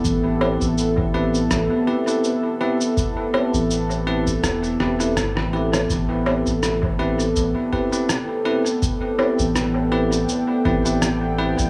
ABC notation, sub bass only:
X:1
M:4/4
L:1/16
Q:"Swing 16ths" 1/4=82
K:Am
V:1 name="Sub bass" clef=bass
A,,,3 A,,,4- A,,, A,,, z6 z | z3 A,,,4- A,,, E,,,2 E,,,2 G,,, A,,,3 | A,,,3 A,,,4- A,,, A,,, z6 z | z3 A,,,4- A,,, z2 A,,,4- A,,, A,,, |]